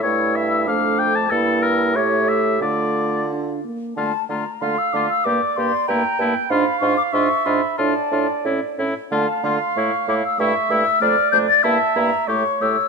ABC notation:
X:1
M:2/4
L:1/16
Q:1/4=93
K:Dm
V:1 name="Flute"
e'4 d'4 | e'4 e4 | f6 z2 | a2 b2 c' e' d' e' |
d'2 c'2 b2 a g | =b2 ^c' d' c'2 b2 | a4 z4 | a2 c'2 ^c'2 d' e' |
^c'2 e'2 f'2 g' a' | a2 b2 ^c'2 e'2 |]
V:2 name="Clarinet"
E4 D4 | E4 G4 | F6 z2 | z4 f4 |
d4 g4 | f4 e4 | d6 z2 | f8 |
e4 d4 | e4 ^c4 |]
V:3 name="Oboe"
^c2 e2 f2 g a | A2 B2 ^c2 e2 | d4 z4 | F2 F2 F2 F2 |
G2 G2 E2 E2 | F2 F2 F2 F2 | F2 F2 E2 E2 | F2 F2 E2 E2 |
E2 E2 D2 D2 | E2 E2 G2 G2 |]
V:4 name="French horn"
A,4 A,4 | B,4 A,4 | A,4 D2 B,2 | A,2 A,2 A,2 A,2 |
B,2 B,2 B,2 B,2 | D2 D2 D2 D2 | D2 D2 ^C2 C2 | A,2 A,2 A,2 A,2 |
A,2 A,2 A,2 A,2 | B,2 B,2 A,2 A,2 |]
V:5 name="Bassoon" clef=bass
G,,4 F,,4 | G,,4 A,,4 | D,6 z2 | D,2 D,2 D,2 D,2 |
G,,2 G,,2 G,,2 G,,2 | ^G,,2 G,,2 G,,2 G,,2 | A,,2 A,,2 A,,2 A,,2 | D,2 D,2 A,,2 A,,2 |
G,,2 G,,2 F,,2 F,,2 | G,,2 G,,2 A,,2 A,,2 |]